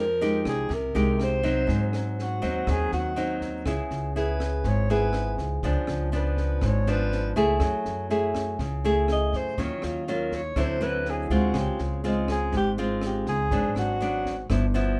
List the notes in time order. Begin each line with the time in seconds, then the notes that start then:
Already playing: F2 F3
0.00 A#4
0.21 G#3 D#4 G4, snare
0.45 C2 G#4, kick, cross-stick, snare
0.69 C2 C3, kick, snare
0.74 A#4
0.95 C2 G#3 D#4 G4, snare
1.20 C5, cross-stick, snare
1.43 F#3 C4 D#4, kick, snare
1.67 G#2, kick, snare
1.93 cross-stick, snare
2.19 F#4, snare
2.42 D#2 F#3 C4 D#4, kick, snare
2.67 D#2 D#3 G#4, kick, cross-stick, snare
2.92 D#2 F#4, snare
3.16 F#3 C4 D#4, snare
3.41 kick, snare
3.66 C#2 C#3 B3 E4 G#4, kick, cross-stick, snare
3.91 C#2, snare
4.16 B3 E4 G#4 B4, snare
4.40 kick, cross-stick, snare
4.64 G#1 G#2, kick, snare
4.68 C#5
4.89 B3 E4 G#4 B4, snare
5.13 cross-stick, snare
5.38 C#2, kick, snare
5.63 C#2 C#3 F3 B3 D4, kick, snare
5.87 C#2, cross-stick, snare
6.12 F3 B3 D4, snare
6.16 B4
6.37 kick, snare
6.61 G#1 G#2, kick, cross-stick, snare
6.66 C#5
6.87 F3 B3 D4 B4, snare
7.12 snare
7.36 C#2 A3 E4 G#4, kick, snare
7.60 F#2 F#3, kick, cross-stick, snare
7.85 F#2, snare
8.10 A3 E4 G#4, snare
8.34 kick, cross-stick, snare
8.59 C#2 C#3, kick, snare
8.84 A3 E4 G#4, snare
9.08 D#5, cross-stick, snare
9.33 F#2 C5, kick, snare
9.58 D#2 D#3 F#3 C#4 F4 C#5, kick, snare
9.82 D#2 F4, cross-stick, snare
10.07 F#3 C#4 F4, snare
10.12 A#4
10.32 C#5, kick, snare
10.56 D2 D3 F#3 C4 E4, kick, cross-stick, snare
10.60 C5
10.81 F#3 C4 E4 B4, snare
11.05 snare
11.10 G#4
11.30 D2 G#3 C4 F4 F#4, kick, snare
11.54 C#2 C#3, kick, cross-stick, snare
11.59 G4
11.79 C#2 C4, snare
12.04 G#3 C4 D#4 F4, snare
12.28 G#4, kick, cross-stick, snare
12.52 G#1 G#2, kick, snare
12.57 G4
12.77 G#3 C4 F4, snare
13.02 cross-stick, snare
13.06 G4
13.26 C#2 G#4, kick, snare
13.51 G#1 G#2 F#3 B3 D4, kick, snare
13.75 G#1 F#4, cross-stick, snare
14.00 F#3 B3 D4, snare
14.25 kick, snare
14.50 G1 G2 F3 B3 E4, kick, cross-stick, snare
14.74 F3 B3 E4, snare